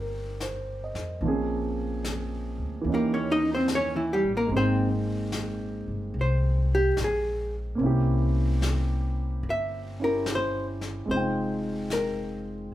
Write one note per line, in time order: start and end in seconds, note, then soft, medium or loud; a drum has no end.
0.00 0.91 G1 medium
0.00 1.22 G3 soft
0.00 1.22 A#3 soft
0.00 1.23 C4 soft
0.00 0.40 D#4 medium
0.00 1.23 D#4 soft
0.00 1.23 G4 medium
0.00 0.57 A#4 soft
0.40 1.06 C5 soft
0.40 snare soft
0.40 hi-hat pedal medium
0.84 1.40 D#5 soft
0.94 1.20 F2 medium
0.94 snare soft
1.21 2.55 A#1 medium
1.21 2.87 F3 soft
1.21 2.83 A#3 soft
1.21 brush sweep soft
1.25 2.88 C4 soft
1.25 2.86 C#4 soft
1.25 2.89 G#4 medium
2.04 snare soft
2.04 hi-hat pedal medium
2.58 2.84 D2 medium
2.81 4.19 D#2 medium
2.81 4.48 E3 soft
2.81 4.47 A#3 soft
2.86 4.51 C#4 soft
2.86 4.52 D#4 soft
2.86 brush sweep soft
2.93 3.14 A#3 medium
2.93 4.54 G4 medium
2.93 3.18 A#4 medium
3.14 3.41 C#4 medium
3.14 3.31 C#5 medium
3.31 3.50 D#4 medium
3.31 3.50 D#5 medium
3.55 3.69 C4 medium
3.55 3.68 C5 medium
3.68 snare soft
3.68 hi-hat pedal medium
3.75 3.96 C#4 medium
3.75 3.99 C#5 medium
3.96 4.23 E3 soft
3.96 4.23 E4 soft
4.13 4.32 G3 medium
4.13 4.31 G4 medium
4.23 4.48 A1 medium
4.37 4.50 A#3 medium
4.37 4.50 A#4 medium
4.46 5.84 G#1 medium
4.46 7.77 G#3 soft
4.46 7.74 A#3 soft
4.46 brush sweep soft
4.52 7.76 C4 soft
4.52 7.81 D#4 soft
4.57 4.89 C4 medium
4.57 4.88 C5 medium
4.57 7.82 G5 medium
5.32 snare soft
5.32 hi-hat pedal medium
5.88 6.13 G1 medium
6.14 6.93 C2 medium
6.14 brush sweep soft
6.21 6.72 C5 medium
6.75 6.98 G4 medium
6.97 7.75 A#1 medium
6.97 snare soft
6.97 hi-hat pedal soft
7.04 7.55 G#4 medium
7.75 9.39 C2 medium
7.75 11.06 A#3 medium
7.75 11.07 C4 soft
7.79 9.98 C#4 medium
7.79 10.00 E4 soft
7.79 brush sweep soft
7.86 10.01 G4 medium
8.62 snare soft
8.62 hi-hat pedal medium
9.43 11.04 G1 medium
9.43 brush sweep soft
9.50 10.01 E5 medium
10.00 11.08 C#4 soft
10.00 11.09 E4 soft
10.00 11.10 G4 soft
10.04 10.27 A#4 medium
10.26 snare soft
10.26 hi-hat pedal soft
10.35 10.66 C5 medium
10.81 snare soft
11.06 12.68 F1 medium
11.06 12.74 G#3 soft
11.06 12.74 C4 soft
11.06 brush sweep soft
11.11 12.74 D#4 soft
11.11 12.74 F4 soft
11.11 11.94 C5 medium
11.17 12.74 G5 medium
11.90 12.74 A#4 medium
11.90 snare soft
11.90 hi-hat pedal soft